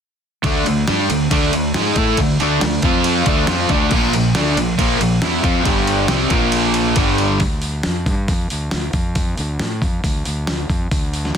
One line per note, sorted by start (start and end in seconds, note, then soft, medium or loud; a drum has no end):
0.44 0.64 D2 medium
0.44 0.66 D3 medium
0.44 0.66 A3 medium
0.44 0.66 D4 loud
0.44 kick loud
0.44 ride medium
0.66 0.87 D2 medium
0.66 0.84 D3 medium
0.66 0.84 A3 medium
0.66 ride medium
0.88 1.09 G2 medium
0.88 1.09 G3 medium
0.88 1.10 D4 loud
0.88 1.09 G4 loud
0.88 snare loud
0.88 ride medium
1.09 1.30 D2 medium
1.09 1.27 D3 medium
1.09 1.27 A3 medium
1.09 ride medium
1.31 1.51 D2 loud
1.31 1.52 D3 medium
1.31 1.52 A3 medium
1.31 1.53 D4 loud
1.31 kick loud
1.31 ride loud
1.53 1.74 D2 medium
1.53 1.71 D3 medium
1.53 1.71 A3 medium
1.53 ride medium
1.74 1.95 G#2 medium
1.74 1.96 G#3 medium
1.74 1.96 D#4 loud
1.74 1.97 G#4 medium
1.74 snare loud
1.74 ride loud
1.96 2.16 A2 medium
1.96 2.18 A3 loud
1.96 2.19 E4 medium
1.96 2.19 A4 loud
1.96 kick medium
1.96 ride medium
2.17 2.38 D2 medium
2.17 kick medium
2.17 ride medium
2.21 2.37 D3 medium
2.21 2.37 A3 medium
2.40 2.61 D2 medium
2.40 2.62 D3 medium
2.40 2.62 A3 medium
2.40 2.62 D4 loud
2.40 ride medium
2.61 2.82 D2 medium
2.61 2.80 D3 medium
2.61 2.81 A3 medium
2.61 snare loud
2.61 ride medium
2.82 3.24 F2 medium
2.82 3.27 F3 loud
2.82 3.27 C4 loud
2.82 3.27 F4 loud
2.82 kick loud
2.82 ride medium
3.04 ride medium
3.26 3.47 D2 medium
3.26 3.49 D3 loud
3.26 3.49 A3 loud
3.26 3.49 D4 loud
3.26 kick loud
3.26 ride medium
3.47 3.69 F2 medium
3.47 3.70 F3 medium
3.47 3.70 C4 medium
3.47 3.71 F4 loud
3.47 snare loud
3.47 ride loud
3.69 3.90 D2 medium
3.69 3.92 D3 medium
3.69 kick loud
3.69 ride medium
3.73 3.93 A3 loud
3.73 3.93 D4 loud
3.91 4.12 A#1 medium
3.91 4.14 A#2 medium
3.91 kick loud
3.91 crash medium
3.95 4.14 F3 loud
3.95 4.15 A#3 loud
4.13 4.33 A#1 medium
4.13 4.32 A#2 medium
4.13 4.32 F3 medium
4.13 ride medium
4.35 4.55 D2 medium
4.35 4.57 D3 medium
4.35 4.57 A3 loud
4.35 4.58 D4 loud
4.35 snare loud
4.35 ride loud
4.56 4.77 A#1 medium
4.56 4.75 A#2 medium
4.56 4.75 F3 medium
4.56 ride medium
4.78 4.99 A#1 loud
4.78 5.00 A#2 medium
4.78 5.00 F3 medium
4.78 5.01 A#3 loud
4.78 kick loud
4.78 ride loud
5.00 5.21 A#1 medium
5.00 5.19 A#2 medium
5.00 5.19 F3 medium
5.00 ride medium
5.22 5.43 E2 medium
5.22 5.43 E3 medium
5.22 5.43 B3 loud
5.22 5.45 E4 loud
5.22 snare loud
5.22 ride loud
5.43 5.65 F2 medium
5.43 5.65 F3 medium
5.43 5.65 C4 loud
5.43 5.66 F4 medium
5.43 kick loud
5.43 ride medium
5.65 6.06 G1 medium
5.65 6.09 G2 loud
5.65 6.08 D3 medium
5.65 6.08 G3 loud
5.65 kick loud
5.65 ride medium
5.87 ride medium
6.08 6.30 C2 medium
6.08 6.31 C3 loud
6.08 6.31 G3 loud
6.08 6.31 C4 loud
6.08 snare loud
6.08 ride medium
6.30 6.93 A#1 loud
6.30 6.97 A#2 loud
6.30 6.97 F3 loud
6.30 6.97 A#3 loud
6.30 kick loud
6.30 ride medium
6.52 ride medium
6.74 ride medium
6.96 7.38 G1 medium
6.96 7.41 G2 medium
6.96 7.41 D3 loud
6.96 7.41 G3 medium
6.96 kick loud
6.96 ride medium
7.18 ride medium
7.40 7.81 D2 medium
7.40 kick medium
7.40 open hi-hat medium
7.62 open hi-hat medium
7.83 8.05 F2 medium
7.83 snare medium
7.83 open hi-hat medium
8.06 8.27 G2 medium
8.06 kick loud
8.06 open hi-hat medium
8.28 8.49 F2 medium
8.28 kick medium
8.28 open hi-hat medium
8.50 8.71 D2 medium
8.50 open hi-hat medium
8.71 8.93 D2 medium
8.71 snare loud
8.71 open hi-hat medium
8.93 9.34 F2 medium
8.93 kick medium
8.93 open hi-hat medium
9.15 kick loud
9.15 open hi-hat medium
9.37 9.59 D2 medium
9.37 open hi-hat soft
9.59 9.81 A2 loud
9.59 snare loud
9.59 open hi-hat medium
9.82 10.02 F2 loud
9.82 kick medium
9.82 open hi-hat soft
10.04 10.24 D2 medium
10.04 kick medium
10.04 open hi-hat medium
10.25 10.67 D2 medium
10.25 open hi-hat medium
10.47 snare loud
10.47 open hi-hat medium
10.69 10.90 F2 medium
10.69 kick medium
10.69 open hi-hat soft
10.91 11.32 D2 medium
10.91 kick loud
10.91 open hi-hat medium
11.13 open hi-hat medium
11.25 snare soft